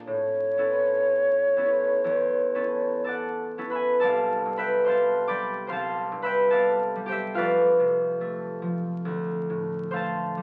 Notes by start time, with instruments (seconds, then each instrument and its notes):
Already playing: harp A#2 A#3 C4 D4 G#4
0.07 harp A2, flute C#5
0.57 harp B3 C#4 E4 A4
1.56 harp B3 C#4 E4 A4
2.04 harp E2
2.55 harp B3 C#4 E4 A4
3.04 harp A4 D5 A5
3.08 harp F#5
3.58 harp B3 C#4 E4 A4
3.70 harp B4 E5 B5
3.75 harp G#5
4.00 harp C2 A4 D5 A5
4.04 harp F5
4.45 harp G2
4.57 harp B4 E5 G5 B5
4.85 harp B3 C5 F5 C6
4.89 harp A5
5.28 harp G3 D5 G5 B5 D6
5.67 harp C2 C5 F5 C6
5.72 harp A5
6.12 harp G2
6.22 harp B4 E5 G5 B5
6.50 harp B3 A4 D5 F5 A5
6.96 harp G3
7.06 harp G4 C5 G5
7.12 harp E5
7.35 harp F2 F4 B4 D5 F5
7.80 harp C3
8.21 harp A3
8.62 harp F3
9.05 harp D2
9.50 harp A2
9.91 harp A3 C5 F5 C6
9.96 harp A5
10.37 harp G3